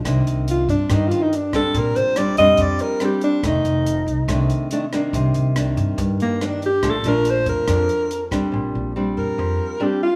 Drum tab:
HH |xxxxxxxx|xxxxxxxx|xxxxxxxx|xxxxxxxx|
SD |r---r--r|--r---r-|r---r--r|--r---r-|
BD |o--oo--o|o---o---|o---o---|o---o---|

HH |xxxxxxxx|--------|
SD |r---r--r|--------|
BD |o--oo--o|--------|